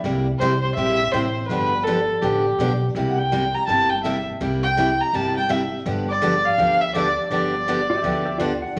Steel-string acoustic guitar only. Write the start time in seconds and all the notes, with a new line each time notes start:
0.04 C3 G3 A#3 E4 G4
0.41 C3 G3 A#3 E4 G4
0.77 C3 G3 A#3 E4 G4
1.13 C3 G3 A#3 E4 G4
1.50 D3 F3 B3 D4 G4
1.87 D3 F3 B3 D4 G4
2.22 D3 F3 B3 D4 G4
2.60 D3 F3 B3 D4 G4
2.95 C3 G3 A#3 E4 G4
3.32 C3 G3 A#3 E4 G4
3.68 C3 G3 A#3 E4 G4
4.04 C3 G3 A#3 E4 G4
4.40 C3 G3 A#3 E4 G4
4.77 C3 G3 A#3 E4 G4
5.13 C3 G3 A#3 E4 G4
5.49 C3 G3 A#3 E4 G4
5.86 D3 F3 B3 D4 G4
6.22 D3 F3 B3 D4 G4
6.58 D3 F3 B3 D4 G4
6.95 D3 F3 B3 D4 G4
7.31 D3 F3 B3 D4 G4
7.68 D3 F3 B3 D4 G4
8.04 D3 F3 B3 D4 G4
8.40 D3 F3 B3 D4 G4